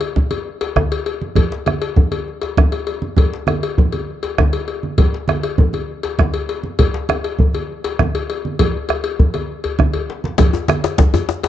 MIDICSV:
0, 0, Header, 1, 4, 480
1, 0, Start_track
1, 0, Tempo, 300903
1, 2179, Time_signature, 12, 3, 24, 8
1, 18316, End_track
2, 0, Start_track
2, 0, Title_t, "Bombo"
2, 17, Note_on_c, 9, 37, 29
2, 177, Note_off_c, 9, 37, 0
2, 262, Note_on_c, 9, 43, 88
2, 421, Note_off_c, 9, 43, 0
2, 1222, Note_on_c, 9, 37, 77
2, 1222, Note_on_c, 9, 43, 71
2, 1381, Note_off_c, 9, 37, 0
2, 1381, Note_off_c, 9, 43, 0
2, 2192, Note_on_c, 9, 43, 77
2, 2351, Note_off_c, 9, 43, 0
2, 2430, Note_on_c, 9, 37, 24
2, 2589, Note_off_c, 9, 37, 0
2, 2673, Note_on_c, 9, 37, 70
2, 2832, Note_off_c, 9, 37, 0
2, 3146, Note_on_c, 9, 43, 77
2, 3306, Note_off_c, 9, 43, 0
2, 3873, Note_on_c, 9, 37, 26
2, 4033, Note_off_c, 9, 37, 0
2, 4118, Note_on_c, 9, 37, 84
2, 4118, Note_on_c, 9, 43, 82
2, 4278, Note_off_c, 9, 37, 0
2, 4278, Note_off_c, 9, 43, 0
2, 4356, Note_on_c, 9, 37, 26
2, 4515, Note_off_c, 9, 37, 0
2, 5064, Note_on_c, 9, 43, 92
2, 5224, Note_off_c, 9, 43, 0
2, 5546, Note_on_c, 9, 37, 74
2, 5705, Note_off_c, 9, 37, 0
2, 5796, Note_on_c, 9, 37, 30
2, 5955, Note_off_c, 9, 37, 0
2, 6028, Note_on_c, 9, 43, 94
2, 6188, Note_off_c, 9, 43, 0
2, 6994, Note_on_c, 9, 37, 88
2, 6994, Note_on_c, 9, 43, 84
2, 7153, Note_off_c, 9, 37, 0
2, 7153, Note_off_c, 9, 43, 0
2, 7954, Note_on_c, 9, 43, 94
2, 8113, Note_off_c, 9, 43, 0
2, 8440, Note_on_c, 9, 37, 74
2, 8599, Note_off_c, 9, 37, 0
2, 8683, Note_on_c, 9, 37, 28
2, 8842, Note_off_c, 9, 37, 0
2, 8919, Note_on_c, 9, 43, 101
2, 9078, Note_off_c, 9, 43, 0
2, 9880, Note_on_c, 9, 37, 85
2, 9880, Note_on_c, 9, 43, 95
2, 10040, Note_off_c, 9, 37, 0
2, 10040, Note_off_c, 9, 43, 0
2, 10835, Note_on_c, 9, 43, 102
2, 10994, Note_off_c, 9, 43, 0
2, 11321, Note_on_c, 9, 37, 89
2, 11481, Note_off_c, 9, 37, 0
2, 11564, Note_on_c, 9, 37, 26
2, 11723, Note_off_c, 9, 37, 0
2, 11800, Note_on_c, 9, 43, 90
2, 11959, Note_off_c, 9, 43, 0
2, 12751, Note_on_c, 9, 37, 86
2, 12751, Note_on_c, 9, 43, 78
2, 12910, Note_off_c, 9, 37, 0
2, 12910, Note_off_c, 9, 43, 0
2, 13711, Note_on_c, 9, 37, 28
2, 13711, Note_on_c, 9, 43, 91
2, 13870, Note_off_c, 9, 37, 0
2, 13870, Note_off_c, 9, 43, 0
2, 14200, Note_on_c, 9, 37, 75
2, 14360, Note_off_c, 9, 37, 0
2, 14671, Note_on_c, 9, 43, 93
2, 14830, Note_off_c, 9, 43, 0
2, 14917, Note_on_c, 9, 37, 28
2, 15077, Note_off_c, 9, 37, 0
2, 15628, Note_on_c, 9, 37, 73
2, 15628, Note_on_c, 9, 43, 85
2, 15788, Note_off_c, 9, 37, 0
2, 15788, Note_off_c, 9, 43, 0
2, 16577, Note_on_c, 9, 43, 99
2, 16737, Note_off_c, 9, 43, 0
2, 17062, Note_on_c, 9, 37, 90
2, 17221, Note_off_c, 9, 37, 0
2, 17298, Note_on_c, 9, 37, 29
2, 17458, Note_off_c, 9, 37, 0
2, 17531, Note_on_c, 9, 43, 104
2, 17690, Note_off_c, 9, 43, 0
2, 18316, End_track
3, 0, Start_track
3, 0, Title_t, "Djembe"
3, 980, Note_on_c, 9, 62, 47
3, 1140, Note_off_c, 9, 62, 0
3, 1214, Note_on_c, 9, 63, 74
3, 1214, Note_on_c, 9, 64, 68
3, 1373, Note_off_c, 9, 63, 0
3, 1373, Note_off_c, 9, 64, 0
3, 1465, Note_on_c, 9, 62, 19
3, 1624, Note_off_c, 9, 62, 0
3, 1698, Note_on_c, 9, 62, 21
3, 1857, Note_off_c, 9, 62, 0
3, 1950, Note_on_c, 9, 62, 19
3, 2109, Note_off_c, 9, 62, 0
3, 2186, Note_on_c, 9, 64, 59
3, 2346, Note_off_c, 9, 64, 0
3, 2424, Note_on_c, 9, 62, 54
3, 2584, Note_off_c, 9, 62, 0
3, 2667, Note_on_c, 9, 63, 57
3, 2827, Note_off_c, 9, 63, 0
3, 2907, Note_on_c, 9, 62, 21
3, 3067, Note_off_c, 9, 62, 0
3, 3143, Note_on_c, 9, 62, 21
3, 3143, Note_on_c, 9, 64, 69
3, 3303, Note_off_c, 9, 62, 0
3, 3303, Note_off_c, 9, 64, 0
3, 3389, Note_on_c, 9, 62, 23
3, 3548, Note_off_c, 9, 62, 0
3, 3638, Note_on_c, 9, 62, 20
3, 3797, Note_off_c, 9, 62, 0
3, 3875, Note_on_c, 9, 62, 46
3, 4035, Note_off_c, 9, 62, 0
3, 4121, Note_on_c, 9, 62, 21
3, 4121, Note_on_c, 9, 63, 76
3, 4121, Note_on_c, 9, 64, 67
3, 4281, Note_off_c, 9, 62, 0
3, 4281, Note_off_c, 9, 63, 0
3, 4281, Note_off_c, 9, 64, 0
3, 4366, Note_on_c, 9, 62, 23
3, 4525, Note_off_c, 9, 62, 0
3, 5084, Note_on_c, 9, 64, 71
3, 5244, Note_off_c, 9, 64, 0
3, 5320, Note_on_c, 9, 62, 48
3, 5480, Note_off_c, 9, 62, 0
3, 5559, Note_on_c, 9, 63, 60
3, 5719, Note_off_c, 9, 63, 0
3, 6049, Note_on_c, 9, 64, 69
3, 6208, Note_off_c, 9, 64, 0
3, 6763, Note_on_c, 9, 62, 45
3, 6923, Note_off_c, 9, 62, 0
3, 7001, Note_on_c, 9, 63, 71
3, 7001, Note_on_c, 9, 64, 70
3, 7160, Note_off_c, 9, 63, 0
3, 7160, Note_off_c, 9, 64, 0
3, 7247, Note_on_c, 9, 62, 20
3, 7407, Note_off_c, 9, 62, 0
3, 7725, Note_on_c, 9, 62, 19
3, 7885, Note_off_c, 9, 62, 0
3, 7958, Note_on_c, 9, 64, 63
3, 8118, Note_off_c, 9, 64, 0
3, 8203, Note_on_c, 9, 62, 49
3, 8363, Note_off_c, 9, 62, 0
3, 8447, Note_on_c, 9, 63, 59
3, 8606, Note_off_c, 9, 63, 0
3, 8935, Note_on_c, 9, 64, 68
3, 9095, Note_off_c, 9, 64, 0
3, 9646, Note_on_c, 9, 62, 51
3, 9805, Note_off_c, 9, 62, 0
3, 9896, Note_on_c, 9, 63, 77
3, 9896, Note_on_c, 9, 64, 71
3, 10055, Note_off_c, 9, 63, 0
3, 10055, Note_off_c, 9, 64, 0
3, 10132, Note_on_c, 9, 62, 22
3, 10292, Note_off_c, 9, 62, 0
3, 10378, Note_on_c, 9, 62, 22
3, 10538, Note_off_c, 9, 62, 0
3, 10610, Note_on_c, 9, 62, 21
3, 10770, Note_off_c, 9, 62, 0
3, 10849, Note_on_c, 9, 64, 69
3, 11009, Note_off_c, 9, 64, 0
3, 11074, Note_on_c, 9, 62, 57
3, 11234, Note_off_c, 9, 62, 0
3, 11318, Note_on_c, 9, 63, 71
3, 11477, Note_off_c, 9, 63, 0
3, 11803, Note_on_c, 9, 64, 69
3, 11962, Note_off_c, 9, 64, 0
3, 12518, Note_on_c, 9, 62, 52
3, 12678, Note_off_c, 9, 62, 0
3, 12765, Note_on_c, 9, 63, 72
3, 12765, Note_on_c, 9, 64, 76
3, 12924, Note_off_c, 9, 63, 0
3, 12924, Note_off_c, 9, 64, 0
3, 13001, Note_on_c, 9, 62, 23
3, 13160, Note_off_c, 9, 62, 0
3, 13243, Note_on_c, 9, 62, 23
3, 13402, Note_off_c, 9, 62, 0
3, 13486, Note_on_c, 9, 62, 18
3, 13646, Note_off_c, 9, 62, 0
3, 13725, Note_on_c, 9, 64, 62
3, 13884, Note_off_c, 9, 64, 0
3, 14190, Note_on_c, 9, 63, 60
3, 14350, Note_off_c, 9, 63, 0
3, 14667, Note_on_c, 9, 64, 76
3, 14826, Note_off_c, 9, 64, 0
3, 14919, Note_on_c, 9, 62, 22
3, 15078, Note_off_c, 9, 62, 0
3, 15393, Note_on_c, 9, 64, 38
3, 15553, Note_off_c, 9, 64, 0
3, 15631, Note_on_c, 9, 64, 42
3, 15790, Note_off_c, 9, 64, 0
3, 15875, Note_on_c, 9, 64, 51
3, 16034, Note_off_c, 9, 64, 0
3, 16107, Note_on_c, 9, 62, 57
3, 16267, Note_off_c, 9, 62, 0
3, 16354, Note_on_c, 9, 62, 55
3, 16514, Note_off_c, 9, 62, 0
3, 16559, Note_on_c, 9, 62, 105
3, 16580, Note_on_c, 9, 64, 66
3, 16719, Note_off_c, 9, 62, 0
3, 16740, Note_off_c, 9, 64, 0
3, 16804, Note_on_c, 9, 63, 78
3, 16822, Note_on_c, 9, 62, 54
3, 16963, Note_off_c, 9, 63, 0
3, 16981, Note_off_c, 9, 62, 0
3, 17042, Note_on_c, 9, 62, 73
3, 17057, Note_on_c, 9, 63, 66
3, 17202, Note_off_c, 9, 62, 0
3, 17217, Note_off_c, 9, 63, 0
3, 17293, Note_on_c, 9, 62, 80
3, 17453, Note_off_c, 9, 62, 0
3, 17520, Note_on_c, 9, 62, 95
3, 17535, Note_on_c, 9, 64, 69
3, 17680, Note_off_c, 9, 62, 0
3, 17695, Note_off_c, 9, 64, 0
3, 17766, Note_on_c, 9, 63, 92
3, 17926, Note_off_c, 9, 63, 0
3, 18005, Note_on_c, 9, 62, 78
3, 18165, Note_off_c, 9, 62, 0
3, 18248, Note_on_c, 9, 62, 73
3, 18316, Note_off_c, 9, 62, 0
3, 18316, End_track
4, 0, Start_track
4, 0, Title_t, "Drums"
4, 10, Note_on_c, 9, 56, 52
4, 170, Note_off_c, 9, 56, 0
4, 257, Note_on_c, 9, 63, 17
4, 257, Note_on_c, 9, 64, 57
4, 416, Note_off_c, 9, 63, 0
4, 416, Note_off_c, 9, 64, 0
4, 487, Note_on_c, 9, 63, 46
4, 490, Note_on_c, 9, 56, 49
4, 646, Note_off_c, 9, 63, 0
4, 650, Note_off_c, 9, 56, 0
4, 973, Note_on_c, 9, 56, 56
4, 1133, Note_off_c, 9, 56, 0
4, 1214, Note_on_c, 9, 63, 61
4, 1374, Note_off_c, 9, 63, 0
4, 1465, Note_on_c, 9, 56, 52
4, 1624, Note_off_c, 9, 56, 0
4, 1694, Note_on_c, 9, 56, 46
4, 1853, Note_off_c, 9, 56, 0
4, 1939, Note_on_c, 9, 63, 47
4, 2098, Note_off_c, 9, 63, 0
4, 2161, Note_on_c, 9, 64, 62
4, 2174, Note_on_c, 9, 56, 58
4, 2320, Note_off_c, 9, 64, 0
4, 2334, Note_off_c, 9, 56, 0
4, 2408, Note_on_c, 9, 63, 19
4, 2568, Note_off_c, 9, 63, 0
4, 2652, Note_on_c, 9, 56, 43
4, 2658, Note_on_c, 9, 63, 66
4, 2812, Note_off_c, 9, 56, 0
4, 2817, Note_off_c, 9, 63, 0
4, 2897, Note_on_c, 9, 56, 53
4, 3056, Note_off_c, 9, 56, 0
4, 3132, Note_on_c, 9, 64, 64
4, 3291, Note_off_c, 9, 64, 0
4, 3374, Note_on_c, 9, 63, 44
4, 3378, Note_on_c, 9, 56, 50
4, 3533, Note_off_c, 9, 63, 0
4, 3537, Note_off_c, 9, 56, 0
4, 3853, Note_on_c, 9, 56, 46
4, 4012, Note_off_c, 9, 56, 0
4, 4106, Note_on_c, 9, 63, 68
4, 4106, Note_on_c, 9, 64, 68
4, 4266, Note_off_c, 9, 63, 0
4, 4266, Note_off_c, 9, 64, 0
4, 4342, Note_on_c, 9, 56, 47
4, 4502, Note_off_c, 9, 56, 0
4, 4576, Note_on_c, 9, 56, 45
4, 4735, Note_off_c, 9, 56, 0
4, 4816, Note_on_c, 9, 63, 55
4, 4976, Note_off_c, 9, 63, 0
4, 5049, Note_on_c, 9, 64, 70
4, 5070, Note_on_c, 9, 56, 53
4, 5208, Note_off_c, 9, 64, 0
4, 5230, Note_off_c, 9, 56, 0
4, 5532, Note_on_c, 9, 63, 72
4, 5556, Note_on_c, 9, 56, 37
4, 5692, Note_off_c, 9, 63, 0
4, 5715, Note_off_c, 9, 56, 0
4, 5793, Note_on_c, 9, 56, 52
4, 5952, Note_off_c, 9, 56, 0
4, 6034, Note_on_c, 9, 63, 21
4, 6034, Note_on_c, 9, 64, 69
4, 6194, Note_off_c, 9, 63, 0
4, 6194, Note_off_c, 9, 64, 0
4, 6261, Note_on_c, 9, 56, 44
4, 6281, Note_on_c, 9, 63, 51
4, 6421, Note_off_c, 9, 56, 0
4, 6441, Note_off_c, 9, 63, 0
4, 6745, Note_on_c, 9, 56, 48
4, 6904, Note_off_c, 9, 56, 0
4, 6992, Note_on_c, 9, 63, 72
4, 6992, Note_on_c, 9, 64, 75
4, 7151, Note_off_c, 9, 63, 0
4, 7151, Note_off_c, 9, 64, 0
4, 7227, Note_on_c, 9, 56, 48
4, 7386, Note_off_c, 9, 56, 0
4, 7462, Note_on_c, 9, 56, 41
4, 7622, Note_off_c, 9, 56, 0
4, 7708, Note_on_c, 9, 63, 53
4, 7867, Note_off_c, 9, 63, 0
4, 7941, Note_on_c, 9, 64, 79
4, 7944, Note_on_c, 9, 56, 54
4, 8101, Note_off_c, 9, 64, 0
4, 8104, Note_off_c, 9, 56, 0
4, 8417, Note_on_c, 9, 63, 73
4, 8435, Note_on_c, 9, 56, 43
4, 8576, Note_off_c, 9, 63, 0
4, 8595, Note_off_c, 9, 56, 0
4, 8669, Note_on_c, 9, 56, 51
4, 8828, Note_off_c, 9, 56, 0
4, 8902, Note_on_c, 9, 63, 22
4, 8902, Note_on_c, 9, 64, 74
4, 9062, Note_off_c, 9, 63, 0
4, 9062, Note_off_c, 9, 64, 0
4, 9142, Note_on_c, 9, 63, 52
4, 9154, Note_on_c, 9, 56, 41
4, 9302, Note_off_c, 9, 63, 0
4, 9313, Note_off_c, 9, 56, 0
4, 9625, Note_on_c, 9, 56, 51
4, 9784, Note_off_c, 9, 56, 0
4, 9868, Note_on_c, 9, 63, 71
4, 9868, Note_on_c, 9, 64, 66
4, 10027, Note_off_c, 9, 63, 0
4, 10027, Note_off_c, 9, 64, 0
4, 10109, Note_on_c, 9, 56, 50
4, 10268, Note_off_c, 9, 56, 0
4, 10354, Note_on_c, 9, 56, 46
4, 10513, Note_off_c, 9, 56, 0
4, 10584, Note_on_c, 9, 63, 49
4, 10743, Note_off_c, 9, 63, 0
4, 10829, Note_on_c, 9, 56, 67
4, 10831, Note_on_c, 9, 64, 63
4, 10988, Note_off_c, 9, 56, 0
4, 10991, Note_off_c, 9, 64, 0
4, 11307, Note_on_c, 9, 63, 66
4, 11310, Note_on_c, 9, 56, 45
4, 11467, Note_off_c, 9, 63, 0
4, 11469, Note_off_c, 9, 56, 0
4, 11555, Note_on_c, 9, 56, 49
4, 11714, Note_off_c, 9, 56, 0
4, 11782, Note_on_c, 9, 63, 18
4, 11782, Note_on_c, 9, 64, 57
4, 11942, Note_off_c, 9, 63, 0
4, 11942, Note_off_c, 9, 64, 0
4, 12024, Note_on_c, 9, 63, 47
4, 12036, Note_on_c, 9, 56, 46
4, 12184, Note_off_c, 9, 63, 0
4, 12196, Note_off_c, 9, 56, 0
4, 12513, Note_on_c, 9, 56, 53
4, 12672, Note_off_c, 9, 56, 0
4, 12750, Note_on_c, 9, 63, 60
4, 12750, Note_on_c, 9, 64, 66
4, 12910, Note_off_c, 9, 63, 0
4, 12910, Note_off_c, 9, 64, 0
4, 12999, Note_on_c, 9, 56, 59
4, 13158, Note_off_c, 9, 56, 0
4, 13235, Note_on_c, 9, 56, 49
4, 13394, Note_off_c, 9, 56, 0
4, 13480, Note_on_c, 9, 63, 49
4, 13639, Note_off_c, 9, 63, 0
4, 13708, Note_on_c, 9, 56, 67
4, 13729, Note_on_c, 9, 64, 62
4, 13867, Note_off_c, 9, 56, 0
4, 13889, Note_off_c, 9, 64, 0
4, 13968, Note_on_c, 9, 63, 17
4, 14128, Note_off_c, 9, 63, 0
4, 14177, Note_on_c, 9, 56, 48
4, 14337, Note_off_c, 9, 56, 0
4, 14418, Note_on_c, 9, 56, 53
4, 14577, Note_off_c, 9, 56, 0
4, 14672, Note_on_c, 9, 64, 60
4, 14832, Note_off_c, 9, 64, 0
4, 14897, Note_on_c, 9, 56, 47
4, 14907, Note_on_c, 9, 63, 48
4, 15057, Note_off_c, 9, 56, 0
4, 15067, Note_off_c, 9, 63, 0
4, 15376, Note_on_c, 9, 56, 51
4, 15536, Note_off_c, 9, 56, 0
4, 15612, Note_on_c, 9, 63, 65
4, 15612, Note_on_c, 9, 64, 66
4, 15772, Note_off_c, 9, 63, 0
4, 15772, Note_off_c, 9, 64, 0
4, 15849, Note_on_c, 9, 56, 50
4, 16008, Note_off_c, 9, 56, 0
4, 16335, Note_on_c, 9, 63, 59
4, 16495, Note_off_c, 9, 63, 0
4, 16567, Note_on_c, 9, 56, 64
4, 16571, Note_on_c, 9, 64, 85
4, 16727, Note_off_c, 9, 56, 0
4, 16730, Note_off_c, 9, 64, 0
4, 17042, Note_on_c, 9, 63, 79
4, 17049, Note_on_c, 9, 56, 45
4, 17202, Note_off_c, 9, 63, 0
4, 17209, Note_off_c, 9, 56, 0
4, 17290, Note_on_c, 9, 56, 47
4, 17450, Note_off_c, 9, 56, 0
4, 17518, Note_on_c, 9, 63, 24
4, 17518, Note_on_c, 9, 64, 76
4, 17678, Note_off_c, 9, 63, 0
4, 17678, Note_off_c, 9, 64, 0
4, 17767, Note_on_c, 9, 56, 49
4, 17768, Note_on_c, 9, 63, 62
4, 17927, Note_off_c, 9, 56, 0
4, 17928, Note_off_c, 9, 63, 0
4, 18241, Note_on_c, 9, 56, 47
4, 18316, Note_off_c, 9, 56, 0
4, 18316, End_track
0, 0, End_of_file